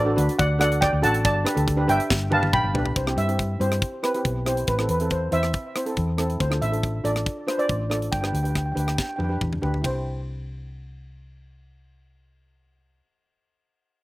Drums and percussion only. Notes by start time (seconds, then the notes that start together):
0.18 closed hi-hat
0.29 closed hi-hat
0.39 kick, closed hi-hat
0.61 cross-stick, closed hi-hat
0.72 closed hi-hat
0.82 kick, cross-stick, closed hi-hat
1.04 closed hi-hat
1.14 closed hi-hat
1.25 kick, closed hi-hat
1.47 cross-stick, closed hi-hat
1.57 closed hi-hat
1.68 kick, closed hi-hat
1.89 closed hi-hat
2.00 closed hi-hat
2.10 kick, snare
2.32 high tom
2.43 high tom
2.53 kick, mid tom
2.75 floor tom
2.86 floor tom
2.96 kick, closed hi-hat
3.07 cross-stick
3.18 closed hi-hat
3.29 closed hi-hat
3.39 kick, closed hi-hat
3.61 closed hi-hat
3.72 cross-stick, closed hi-hat
3.82 kick, closed hi-hat
4.04 cross-stick, closed hi-hat
4.14 closed hi-hat
4.25 kick, closed hi-hat
4.46 cross-stick, closed hi-hat
4.57 closed hi-hat
4.67 kick, closed hi-hat
4.79 cross-stick
4.89 closed hi-hat
5.00 closed hi-hat
5.10 kick, closed hi-hat
5.32 closed hi-hat
5.43 cross-stick, closed hi-hat
5.53 kick, closed hi-hat
5.76 cross-stick, closed hi-hat
5.86 closed hi-hat
5.97 kick, closed hi-hat
6.18 cross-stick, closed hi-hat
6.30 closed hi-hat
6.40 kick, closed hi-hat
6.52 cross-stick
6.62 closed hi-hat
6.73 closed hi-hat
6.83 kick, closed hi-hat
7.05 closed hi-hat
7.16 cross-stick, closed hi-hat
7.26 kick, closed hi-hat
7.48 cross-stick, closed hi-hat
7.59 closed hi-hat
7.69 kick, closed hi-hat
7.91 cross-stick, closed hi-hat
8.02 closed hi-hat
8.13 kick, closed hi-hat
8.24 cross-stick
8.35 closed hi-hat
8.45 closed hi-hat
8.55 kick, cross-stick, closed hi-hat
8.77 closed hi-hat
8.88 cross-stick, closed hi-hat
8.98 kick, snare
9.20 high tom
9.41 kick, mid tom
9.53 mid tom
9.63 floor tom
9.74 floor tom
9.84 kick, ride